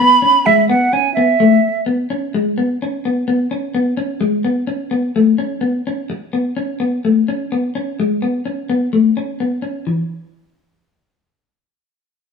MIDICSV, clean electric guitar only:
0, 0, Header, 1, 3, 480
1, 0, Start_track
1, 0, Tempo, 470219
1, 478, Time_signature, 4, 2, 24, 8
1, 12584, End_track
2, 0, Start_track
2, 0, Title_t, "Clean electric guitar"
2, 0, Program_c, 0, 27
2, 0, Note_on_c, 0, 59, 82
2, 181, Note_off_c, 0, 59, 0
2, 226, Note_on_c, 0, 61, 79
2, 416, Note_off_c, 0, 61, 0
2, 474, Note_on_c, 0, 56, 93
2, 661, Note_off_c, 0, 56, 0
2, 710, Note_on_c, 0, 59, 81
2, 898, Note_off_c, 0, 59, 0
2, 950, Note_on_c, 0, 61, 74
2, 1137, Note_off_c, 0, 61, 0
2, 1194, Note_on_c, 0, 59, 82
2, 1379, Note_off_c, 0, 59, 0
2, 1430, Note_on_c, 0, 57, 81
2, 1617, Note_off_c, 0, 57, 0
2, 1902, Note_on_c, 0, 59, 74
2, 2091, Note_off_c, 0, 59, 0
2, 2147, Note_on_c, 0, 61, 73
2, 2333, Note_off_c, 0, 61, 0
2, 2393, Note_on_c, 0, 56, 80
2, 2577, Note_off_c, 0, 56, 0
2, 2630, Note_on_c, 0, 59, 77
2, 2815, Note_off_c, 0, 59, 0
2, 2882, Note_on_c, 0, 61, 71
2, 3062, Note_off_c, 0, 61, 0
2, 3117, Note_on_c, 0, 59, 72
2, 3298, Note_off_c, 0, 59, 0
2, 3346, Note_on_c, 0, 59, 78
2, 3531, Note_off_c, 0, 59, 0
2, 3584, Note_on_c, 0, 61, 73
2, 3770, Note_off_c, 0, 61, 0
2, 3823, Note_on_c, 0, 59, 76
2, 4009, Note_off_c, 0, 59, 0
2, 4056, Note_on_c, 0, 61, 73
2, 4245, Note_off_c, 0, 61, 0
2, 4294, Note_on_c, 0, 56, 83
2, 4483, Note_off_c, 0, 56, 0
2, 4538, Note_on_c, 0, 59, 71
2, 4725, Note_off_c, 0, 59, 0
2, 4771, Note_on_c, 0, 61, 67
2, 4961, Note_off_c, 0, 61, 0
2, 5013, Note_on_c, 0, 59, 77
2, 5202, Note_off_c, 0, 59, 0
2, 5266, Note_on_c, 0, 57, 75
2, 5450, Note_off_c, 0, 57, 0
2, 5496, Note_on_c, 0, 61, 72
2, 5684, Note_off_c, 0, 61, 0
2, 5728, Note_on_c, 0, 59, 72
2, 5919, Note_off_c, 0, 59, 0
2, 5992, Note_on_c, 0, 61, 70
2, 6174, Note_off_c, 0, 61, 0
2, 6464, Note_on_c, 0, 59, 75
2, 6649, Note_off_c, 0, 59, 0
2, 6702, Note_on_c, 0, 61, 74
2, 6888, Note_off_c, 0, 61, 0
2, 6941, Note_on_c, 0, 59, 74
2, 7128, Note_off_c, 0, 59, 0
2, 7194, Note_on_c, 0, 57, 71
2, 7376, Note_off_c, 0, 57, 0
2, 7436, Note_on_c, 0, 61, 69
2, 7617, Note_off_c, 0, 61, 0
2, 7677, Note_on_c, 0, 59, 73
2, 7858, Note_off_c, 0, 59, 0
2, 7914, Note_on_c, 0, 61, 71
2, 8096, Note_off_c, 0, 61, 0
2, 8162, Note_on_c, 0, 56, 83
2, 8342, Note_off_c, 0, 56, 0
2, 8394, Note_on_c, 0, 59, 64
2, 8577, Note_off_c, 0, 59, 0
2, 8631, Note_on_c, 0, 61, 64
2, 8815, Note_off_c, 0, 61, 0
2, 8876, Note_on_c, 0, 59, 75
2, 9059, Note_off_c, 0, 59, 0
2, 9116, Note_on_c, 0, 57, 71
2, 9299, Note_off_c, 0, 57, 0
2, 9360, Note_on_c, 0, 61, 64
2, 9542, Note_off_c, 0, 61, 0
2, 9599, Note_on_c, 0, 59, 64
2, 9782, Note_off_c, 0, 59, 0
2, 9823, Note_on_c, 0, 61, 60
2, 10012, Note_off_c, 0, 61, 0
2, 10073, Note_on_c, 0, 52, 66
2, 10217, Note_off_c, 0, 52, 0
2, 12584, End_track
3, 0, Start_track
3, 0, Title_t, "Muted clean electric guitar strokes"
3, 6224, Note_on_c, 9, 29, 90
3, 6326, Note_off_c, 9, 29, 0
3, 12584, End_track
0, 0, End_of_file